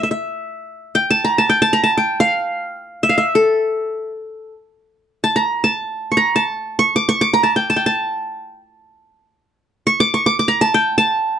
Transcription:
0.03 0.11 E5 medium
0.11 1.03 E5 soft
0.95 1.49 G5 medium
1.11 1.30 A5 medium
1.24 1.44 A#5 medium
1.38 1.61 A5 medium
1.50 1.97 G5 medium
1.62 1.79 A5 medium
1.73 1.90 A#5 medium
1.83 2.61 A5 medium
1.97 2.80 G5 medium
2.20 3.09 F5 medium
3.03 3.15 E5 medium
3.09 3.24 F5 medium
3.18 4.10 E5 medium
3.35 4.52 A4 medium
5.24 5.42 A5 medium
5.36 5.70 A#5 medium
5.64 6.23 A5 medium
6.12 6.79 C#6 soft
6.17 6.42 A#5 medium
6.36 7.13 A5 medium
6.79 7.02 C#6 medium
6.96 7.15 D6 medium
7.09 7.27 C#6 medium
7.21 7.86 D6 medium
7.33 7.49 A#5 medium
7.43 7.69 A5 medium
7.56 7.76 G5 medium
7.70 7.86 A5 medium
7.76 8.59 G5 medium
7.86 9.23 A5 medium
9.87 10.06 C#6 medium
10.00 10.20 D6 medium
10.14 10.32 C#6 medium
10.26 10.39 D6 medium
10.39 11.04 D6 medium
10.48 10.67 A#5 medium
10.61 10.97 A5 medium
10.74 11.39 G5 medium
10.98 11.39 A5 medium

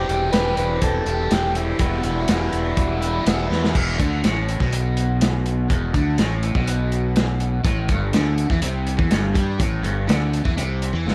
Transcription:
0.00 0.32 E3 medium
0.00 0.30 G4 medium
0.07 0.30 E1 loud
0.07 0.32 G3 medium
0.07 0.33 C4 medium
0.07 0.34 G4 medium
0.07 closed hi-hat medium
0.32 0.54 E1 medium
0.32 1.30 E3 loud
0.32 1.08 G3 medium
0.32 1.06 C4 loud
0.32 1.05 G4 loud
0.32 0.56 B4 loud
0.32 snare loud
0.32 closed hi-hat medium
0.57 0.78 E1 medium
0.57 0.81 B4 medium
0.57 closed hi-hat medium
0.82 1.03 E1 medium
0.82 1.33 A4 medium
0.82 kick loud
0.82 closed hi-hat loud
1.06 1.27 E1 medium
1.06 1.31 G3 medium
1.06 1.30 C4 medium
1.06 1.32 G4 medium
1.06 closed hi-hat medium
1.30 1.72 E1 loud
1.30 1.79 E3 medium
1.30 1.56 G3 medium
1.30 1.54 C4 medium
1.30 1.57 G4 medium
1.30 1.54 G4 medium
1.30 snare loud
1.30 closed hi-hat loud
1.54 1.79 G3 medium
1.54 1.78 C4 medium
1.54 3.47 E4 medium
1.54 1.80 G4 medium
1.54 closed hi-hat medium
1.78 2.01 E1 medium
1.78 2.27 E2 medium
1.78 2.28 B2 medium
1.78 2.05 E3 medium
1.78 2.04 G3 medium
1.78 2.03 B3 medium
1.78 2.03 E4 loud
1.78 kick loud
1.78 closed hi-hat medium
2.03 2.25 E1 medium
2.03 2.28 E3 medium
2.03 2.29 G3 medium
2.03 2.29 B3 medium
2.03 2.30 E4 medium
2.03 closed hi-hat medium
2.28 2.49 E1 medium
2.28 3.26 E2 loud
2.28 3.26 B2 loud
2.28 3.02 E3 loud
2.28 3.01 G3 loud
2.28 3.00 B3 loud
2.28 2.99 E4 loud
2.28 snare loud
2.28 closed hi-hat loud
2.53 2.74 E1 medium
2.53 closed hi-hat medium
2.77 3.18 E1 medium
2.77 kick loud
2.77 closed hi-hat medium
3.01 3.24 E3 medium
3.01 3.25 G3 medium
3.01 3.26 B3 medium
3.01 3.26 E4 medium
3.01 closed hi-hat medium
3.25 3.47 E1 medium
3.25 3.50 E3 medium
3.25 3.50 G3 medium
3.25 3.49 B3 medium
3.25 3.48 E4 medium
3.25 snare loud
3.25 closed hi-hat medium
3.49 3.71 E2 medium
3.49 3.74 E3 medium
3.49 3.74 G3 medium
3.49 3.73 B3 medium
3.49 3.73 E4 medium
3.49 snare medium
3.64 snare medium
3.73 3.98 E1 medium
3.73 3.98 E2 medium
3.73 kick loud
3.73 crash loud
3.98 4.22 D2 medium
3.98 4.23 D3 loud
3.98 kick loud
3.98 closed hi-hat medium
4.24 4.58 A1 medium
4.24 4.60 A2 loud
4.24 snare loud
4.24 closed hi-hat loud
4.48 closed hi-hat medium
4.60 5.66 B1 medium
4.60 5.70 B2 loud
4.60 kick medium
4.60 snare soft
4.73 closed hi-hat loud
4.97 closed hi-hat medium
5.21 snare loud
5.21 closed hi-hat loud
5.46 closed hi-hat medium
5.70 5.93 E1 medium
5.70 5.94 E2 loud
5.70 kick medium
5.70 closed hi-hat medium
5.94 6.17 D2 medium
5.94 6.18 D3 loud
5.94 kick loud
5.94 closed hi-hat medium
6.18 6.53 A1 loud
6.18 6.55 A2 loud
6.18 snare loud
6.18 closed hi-hat medium
6.43 closed hi-hat medium
6.55 7.61 B1 medium
6.55 7.64 B2 loud
6.55 kick loud
6.67 closed hi-hat loud
6.92 closed hi-hat medium
7.16 snare loud
7.16 closed hi-hat medium
7.40 closed hi-hat medium
7.64 7.87 A1 loud
7.64 7.88 A2 loud
7.64 kick loud
7.64 closed hi-hat medium
7.89 8.12 G1 medium
7.89 8.13 G2 loud
7.89 kick loud
7.89 closed hi-hat medium
8.13 8.47 D2 medium
8.13 8.50 D3 loud
8.13 snare loud
8.13 closed hi-hat loud
8.38 closed hi-hat medium
8.50 8.62 E2 medium
8.50 8.62 E3 loud
8.50 kick medium
8.50 snare soft
8.62 8.96 C2 medium
8.62 8.98 C3 loud
8.62 closed hi-hat loud
8.87 closed hi-hat medium
8.98 9.10 E2 medium
8.98 9.10 E3 loud
8.98 kick loud
9.10 9.33 G1 medium
9.10 9.35 G2 loud
9.10 snare loud
9.10 closed hi-hat loud
9.34 9.58 G2 loud
9.34 9.59 G3 loud
9.34 kick loud
9.34 closed hi-hat medium
9.59 9.82 A1 loud
9.59 9.83 A2 loud
9.59 kick loud
9.59 closed hi-hat loud
9.83 10.07 G1 loud
9.83 10.07 G2 loud
9.83 closed hi-hat medium
10.07 10.43 D2 loud
10.07 10.44 D3 loud
10.07 snare loud
10.07 closed hi-hat loud
10.33 closed hi-hat medium
10.45 10.57 E2 medium
10.45 10.57 E3 loud
10.45 kick loud
10.45 snare soft
10.57 10.91 C2 medium
10.57 10.93 C3 loud
10.57 closed hi-hat loud
10.82 closed hi-hat medium
10.93 11.05 E2 loud
10.93 11.06 E3 loud
11.06 11.15 G1 medium
11.06 11.15 G2 loud
11.06 snare medium

